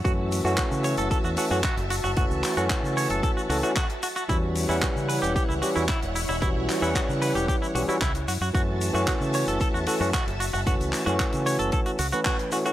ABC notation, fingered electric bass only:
X:1
M:4/4
L:1/16
Q:1/4=113
K:F#phr
V:1 name="Fingered electric bass" clef=bass
F,,3 F,, z C,2 F,,, z E,, z F,, z F,,,2 F,,,- | F,,, C,, z F,, z C,2 F,,, z2 C,, z4 z | E,,3 E,, z C,2 E,,, z C,, z E,, z E,,,2 E,,,- | E,,, B,,, z E,, z C,2 E,,, z2 B,,, z C,,2 F,, F,, |
F,,3 F,, z C,2 F,,, z E,, z F,, z F,,,2 F,,,- | F,,, C,, z F,, z C,2 F,,, z2 C,, z4 z |]